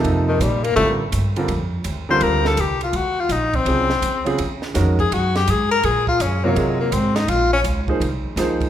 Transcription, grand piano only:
X:1
M:4/4
L:1/8
Q:"Swing" 1/4=166
K:Fmix
V:1 name="Grand piano"
[C,F,B,EA]2 z2 [D,G,CFB] z2 [D,G,CFB] | z3 [D,G,CFB]3 z2 | [K:Ebdor] z4 [D,G,CFA] z2 [D,G,CFA] | z2 [E,A,DGB] z4 z |
z3 [C,G,FBd]3 z2 | z3 [F,B,EAc] z2 [F,B,EAc]2 |]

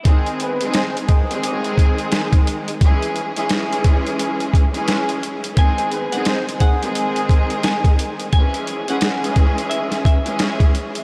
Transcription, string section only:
X:1
M:4/4
L:1/16
Q:"Swing 16ths" 1/4=87
K:C#m
V:1 name="String section"
[D,G,^B,G]3 [D,G,B,G]3 z [D,G,B,G]8 z | [E,G,CG]3 [E,G,CG] [E,G,CG]6 z [E,G,CG]4 z | [D,G,^B,G]3 [D,G,B,G]3 z [D,G,B,G]8 z | [E,G,CG]3 [E,G,CG] [E,G,CG]6 z [E,G,CG]4 z |]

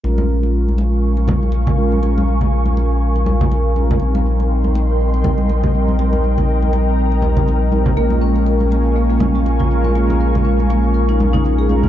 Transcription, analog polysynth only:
X:1
M:4/4
L:1/8
Q:"Swing 16ths" 1/4=121
K:Bbdor
V:1 name="Analog polysynth"
[A,DFB]6- [A,DFB] [A,DFB] | [A,DFB]6- [A,DFB] [A,DFB] | [G,CEB]6- [G,CEB] [G,CEB] | [G,CEB]6- [G,CEB] [G,CEB] |
[A,DFB]6- [A,DFB] [A,DFB] | [A,DFB]6- [A,DFB] [A,DFB] |]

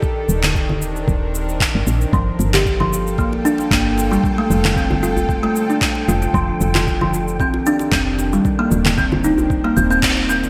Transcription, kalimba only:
X:1
M:4/4
L:1/16
Q:"Swing 16ths" 1/4=114
K:Cdor
V:1 name="Kalimba"
z16 | F, z2 G2 F,3 B, z D2 B, z2 G, | z A,3 C z F z2 A,2 D3 F z | F, z2 F2 F,3 C z D2 C z2 G, |
z B,3 C z E z2 B, C C z2 C z |]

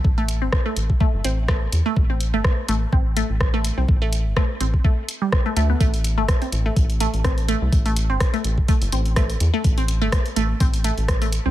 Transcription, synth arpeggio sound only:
X:1
M:4/4
L:1/16
Q:"Swing 16ths" 1/4=125
K:Am
V:1 name="Synth arpeggio sound"
z A, z C z A, z2 A, z C z A, z2 A, | z C z A, z2 A, z C z A, z2 A, z C | z A, z2 A, z C z A, z2 G, z A, A, B, | A, z2 A, z C z A, z2 A, z C z A, z |
z A, z C z A, z2 A, z C z A, z2 A, | z C z A, z2 A, z C z A, z2 A, z C |]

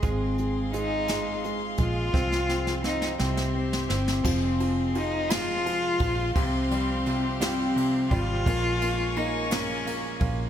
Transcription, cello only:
X:1
M:6/8
L:1/8
Q:3/8=57
K:Fm
V:1 name="Cello"
C2 E2 z F- | F2 E C2 C- | C2 E F3 | C3 C2 F- |
F2 E D2 z |]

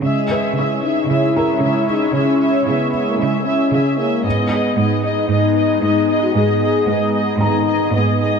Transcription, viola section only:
X:1
M:4/4
L:1/8
Q:1/4=114
K:C#dor
V:1 name="Viola section"
[Ge] [Ge] [Ge] [Ge] [Ge] [Ge] [Ge] [Ge] | [Ge] [Ge] [Ge] [Ge] [Ge] [Ge] [Ge] [Ge] | [Gd] [Gd] [Gd] [Gd] [Gd] [Gd] [Gd] [Gd] | [Gd] [Gd] [Gd] [Gd] [Gd] [Gd] [Gd] [Gd] |]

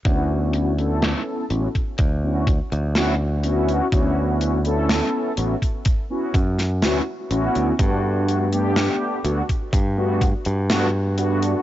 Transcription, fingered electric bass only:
X:1
M:4/4
L:1/16
Q:1/4=62
K:D
V:1 name="Fingered electric bass" clef=bass
D,,4 z2 A,,, z D,,2 z D,,4 z | D,,4 z2 A,,, z3 F,,2 D,, z A,,, D,, | G,,4 z2 D,, z G,,2 z G,,4 z |]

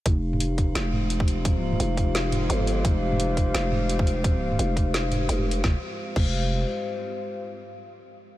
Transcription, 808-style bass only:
X:1
M:4/4
L:1/8
Q:"Swing 16ths" 1/4=172
K:Fm
V:1 name="808-style bass" clef=bass
F,,,4 F,,,4- | F,,,2 F,,,4 G,,,2 | F,,,4 F,,,4- | F,,,2 F,,,4 F,,,2 |
F,,, z2 F,,,3 z2 | z8 |]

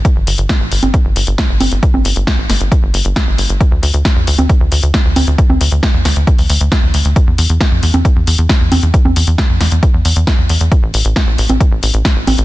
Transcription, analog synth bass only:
X:1
M:4/4
L:1/16
Q:1/4=135
K:Dm
V:1 name="Analog synth bass" clef=bass
z G,,, G,,, G,,, z A,,, G,,, G,,, z G,,, G,,, G,,, z G,,, G,,, G,,, | z G,,, G,,, G,,, z A,,, G,,, G,,, z G,,, G,,, G,,, z G,,, G,,, G,,, | z D,, D,, D,, z E,, D,, D,, z D,, D,, D,, z D,, D,, D,, | z D,, D,, D,, z E,, D,, D,, z D,, D,, D,, z D,, D,, D,, |
z E,, E,, E,, z F,, E,, E,, z E,, E,, E,, z E,, E,, E,, | z E,, E,, E,, z F,, E,, E,, z E,, E,, E,, z E,, E,, E,, | z A,,, A,,, A,,, z B,,, A,,, A,,, z A,,, A,,, A,,, z A,,, A,,, A,,, |]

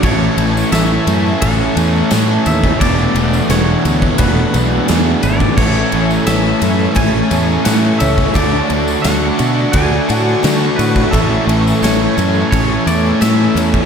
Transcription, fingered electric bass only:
X:1
M:4/4
L:1/8
Q:1/4=87
K:A
V:1 name="Fingered electric bass" clef=bass
A,,, A,,, A,,, F,, A,,, E,, A,, _E,, | E,,, E,,, E,,, D,, E,,, B,,, E,, G,,, | A,,, A,,, A,,, F,, A,,, E,, A,, C,, | D,, D,, D,, B,, D,, A,, D, A,, |
A,,, A,,, A,,, F,, A,,, E,, A,, E,, |]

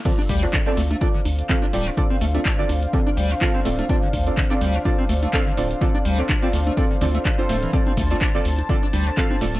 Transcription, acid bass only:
X:1
M:4/4
L:1/16
Q:"Swing 16ths" 1/4=125
K:Dm
V:1 name="Acid bass"
D, D G, F, D, C A, A, D D, z2 D, D G, F, | D, C A, A, D D, z2 D, D G, F, D, C A, A, | D D, z2 D, D G, F, D, C A, A, D D, z2 | D, D G, F, D, C A, A, D D, D, A, D z A, E, |
D, C A, A, D D, z2 D, D G, F, D, C A, A, |]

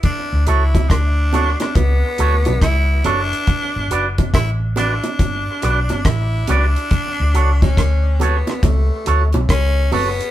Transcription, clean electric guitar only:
X:1
M:4/4
L:1/8
Q:"Swing 16ths" 1/4=70
K:D
V:1 name="Clean electric guitar"
z [FAc] z [FAc] z [FAc] z [FAc] | z [FBd] z [FBd] z [FBd] z [FBd] | z [FAc] z [FAc] z [FAc] z [FAc] |]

